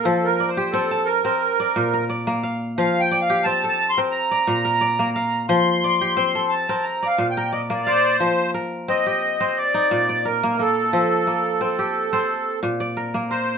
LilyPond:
<<
  \new Staff \with { instrumentName = "Accordion" } { \time 4/4 \key f \mixolydian \tempo 4 = 88 << { \tuplet 3/2 { a'8 bes'8 c''8 } a'8 bes'4. r4 | \tuplet 3/2 { f''8 g''8 f''8 a''8 a''8 c'''8 } bes''4. bes''8 | c'''4. a''8 \tuplet 3/2 { bes''8 f''8 g''8 ees''8 d''4 } | r1 |
r1 | } \\ { r1 | r1 | r2. r8 c''8~ | c''8 r8 ees''4 d''4 bes'8 a'8~ |
a'4 a'4. r4 c''8 | } >> }
  \new Staff \with { instrumentName = "Kora" } { \time 4/4 \key f \mixolydian f''16 r16 d''16 g'8 a''8 bes'8 d''8 bes'16 d''8 f''8~ | f''16 r16 d''16 g'8 a'8 bes'8 d''8 bes'16 d''8 f''8~ | f''16 r16 d''16 g'8 a'8 bes'8 d''8 bes'16 d''8 f''8~ | f''16 r16 bes'8. g'8 c''8 ees'8 d''16 bes'8 bes8~ |
bes16 r16 bes8. g'8 c''8 r8 d''16 bes'8 bes'8 | }
  \new Staff \with { instrumentName = "Kora" } { \time 4/4 \key f \mixolydian f8 r8 c'8 r16 c'16 r8 bes,8 r16 bes8 r16 | f8 r8 c'8 r16 c'16 r8 bes,8 r16 bes8 r16 | f8 r8 c'8 r16 c'16 r8 bes,8 r16 bes8 r16 | f8 r8 c'8 r16 c'16 r8 bes,8 r16 bes8 r16 |
f8 r8 c'8 r16 c'16 r8 bes,8 r16 bes8 r16 | }
>>